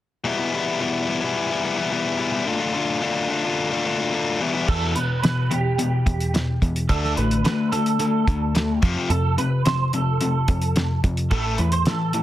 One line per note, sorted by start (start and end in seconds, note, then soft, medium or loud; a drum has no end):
0.24 0.66 E2 medium
0.24 0.67 B2 medium
0.24 0.40 E3 medium
0.24 0.39 G3 medium
0.24 0.38 B3 medium
0.24 0.38 E4 medium
0.38 0.52 E3 medium
0.38 0.52 G3 medium
0.38 0.53 B3 medium
0.38 0.54 E4 medium
0.52 0.80 E3 medium
0.52 0.80 G3 medium
0.52 0.81 B3 medium
0.52 0.82 E4 medium
0.80 1.36 E2 medium
0.80 1.36 B2 medium
0.80 1.07 E3 medium
0.80 1.07 G3 medium
0.80 1.08 B3 medium
0.80 1.10 E4 medium
1.08 1.24 E3 medium
1.08 1.22 G3 medium
1.08 1.21 B3 medium
1.08 1.21 E4 medium
1.22 1.51 E3 medium
1.22 1.50 G3 medium
1.22 1.50 B3 medium
1.22 1.49 E4 medium
1.50 1.63 E3 soft
1.50 1.63 G3 medium
1.50 1.64 B3 medium
1.50 1.65 E4 medium
1.63 1.79 E3 medium
1.63 1.78 G3 medium
1.63 1.77 B3 medium
1.63 1.77 E4 medium
1.77 1.91 E3 medium
1.77 1.91 G3 soft
1.77 1.91 B3 medium
1.77 1.93 E4 medium
1.90 2.45 E2 medium
1.90 2.45 B2 medium
1.90 2.18 E3 medium
1.90 2.18 G3 medium
1.90 2.19 B3 medium
1.90 2.21 E4 medium
2.18 2.35 E3 medium
2.18 2.33 G3 medium
2.18 2.32 B3 medium
2.18 2.32 E4 medium
2.32 2.46 E3 medium
2.32 2.46 G3 medium
2.32 2.45 B3 soft
2.32 2.48 E4 medium
2.46 2.73 D3 medium
2.46 2.62 A3 medium
2.46 2.61 D4 medium
2.46 2.59 F4 loud
2.60 2.74 A3 medium
2.60 2.75 D4 medium
2.60 2.75 F4 medium
2.74 3.00 D3 medium
2.74 3.01 A3 medium
2.74 3.02 D4 medium
2.74 3.03 F4 medium
3.02 3.28 D3 medium
3.02 3.29 A3 medium
3.02 3.30 D4 medium
3.02 3.31 F4 medium
3.29 3.71 D3 medium
3.29 3.45 A3 medium
3.29 3.43 D4 medium
3.29 3.42 F4 medium
3.43 3.72 A3 soft
3.43 3.71 D4 medium
3.43 3.69 F4 medium
3.70 3.84 A3 medium
3.70 3.85 D4 medium
3.70 3.86 F4 medium
3.85 4.12 D3 medium
3.85 4.00 A3 medium
3.85 3.99 D4 medium
3.85 3.97 F4 medium
3.98 4.13 A3 soft
3.98 4.13 D4 medium
3.98 4.14 F4 medium
4.13 4.39 D3 medium
4.13 4.40 A3 medium
4.13 4.40 D4 medium
4.13 4.40 F4 medium
4.40 4.66 E2 medium
4.40 4.67 B2 medium
4.40 4.55 E3 medium
4.40 4.54 G3 medium
4.40 4.54 B3 medium
4.40 4.53 E4 medium
4.54 4.67 E3 medium
4.54 4.67 G3 soft
4.54 4.67 B3 medium
4.54 4.66 E4 medium
4.67 4.94 E2 medium
4.67 4.94 B2 medium
4.67 4.95 E3 medium
4.67 4.94 A4 loud
4.67 kick medium
4.67 crash medium
4.95 5.21 E2 medium
4.95 5.21 B2 medium
4.95 5.21 B4 medium
4.95 closed hi-hat medium
5.22 5.48 E2 medium
5.22 5.49 B2 medium
5.22 5.52 B4 loud
5.22 snare medium
5.22 closed hi-hat medium
5.50 5.76 E2 medium
5.50 5.76 B2 medium
5.50 6.57 G4 medium
5.50 closed hi-hat medium
5.78 6.04 E2 medium
5.78 6.04 B2 medium
5.78 closed hi-hat medium
6.06 6.31 E2 medium
6.06 6.58 E2 medium
6.06 6.32 B2 medium
6.06 kick medium
6.06 closed hi-hat medium
6.20 closed hi-hat medium
6.34 6.59 E2 medium
6.34 6.59 B2 medium
6.34 snare loud
6.34 closed hi-hat medium
6.62 6.87 E2 medium
6.62 6.87 B2 medium
6.62 kick medium
6.62 closed hi-hat medium
6.76 closed hi-hat medium
6.89 7.15 D2 medium
6.89 7.15 D3 medium
6.89 7.16 A3 medium
6.89 7.16 D4 medium
6.89 7.16 A4 loud
6.89 kick medium
6.89 closed hi-hat medium
7.05 snare soft
7.17 7.43 A1 medium
7.17 7.42 D3 medium
7.17 7.42 A3 medium
7.17 7.43 B4 medium
7.17 closed hi-hat medium
7.31 closed hi-hat medium
7.44 7.70 D3 medium
7.44 7.70 A3 medium
7.44 7.71 B4 loud
7.44 snare medium
7.44 closed hi-hat medium
7.72 7.97 D3 medium
7.72 7.97 A3 medium
7.72 8.78 A4 medium
7.72 closed hi-hat medium
7.86 closed hi-hat medium
7.99 8.25 D3 medium
7.99 8.25 A3 medium
7.99 closed hi-hat medium
8.27 8.79 D2 medium
8.27 8.53 D3 medium
8.27 8.53 A3 medium
8.27 kick medium
8.27 closed hi-hat medium
8.55 8.80 D3 medium
8.55 8.80 A3 medium
8.55 snare loud
8.55 closed hi-hat medium
8.82 9.08 F2 medium
8.82 8.95 F2 medium
8.82 9.09 C3 medium
8.82 9.09 F3 medium
8.82 kick medium
8.82 closed hi-hat medium
9.10 9.35 F2 medium
9.10 9.35 C3 medium
9.10 9.36 A4 loud
9.10 closed hi-hat medium
9.38 9.63 F2 medium
9.38 9.63 C3 medium
9.38 9.64 B4 medium
9.38 closed hi-hat medium
9.65 9.91 F2 medium
9.65 9.91 C3 medium
9.65 9.93 C5 loud
9.65 snare loud
9.65 closed hi-hat medium
9.93 10.18 F2 medium
9.93 10.19 C3 medium
9.93 11.00 A4 medium
9.93 closed hi-hat medium
10.21 10.46 F2 medium
10.21 10.46 C3 medium
10.21 closed hi-hat medium
10.48 11.00 F2 medium
10.48 10.74 F2 medium
10.48 10.74 C3 medium
10.48 kick medium
10.48 closed hi-hat medium
10.62 closed hi-hat medium
10.76 11.01 F2 medium
10.76 11.01 C3 medium
10.76 snare loud
10.76 closed hi-hat medium
11.04 11.29 F2 medium
11.04 11.29 C3 medium
11.04 kick medium
11.04 closed hi-hat medium
11.17 closed hi-hat medium
11.30 11.57 A1 medium
11.30 11.57 A2 medium
11.30 11.58 E3 medium
11.30 11.58 A3 medium
11.30 11.57 A4 loud
11.30 kick loud
11.30 closed hi-hat medium
11.58 11.84 E2 medium
11.58 11.84 A2 medium
11.58 11.84 E3 medium
11.58 11.71 B4 medium
11.58 closed hi-hat medium
11.72 11.85 C5 medium
11.72 closed hi-hat medium
11.86 12.12 A2 medium
11.86 12.12 E3 medium
11.86 12.23 A4 medium
11.86 snare loud
11.86 closed hi-hat medium
12.13 12.23 A2 medium
12.13 12.23 E3 medium
12.13 closed hi-hat medium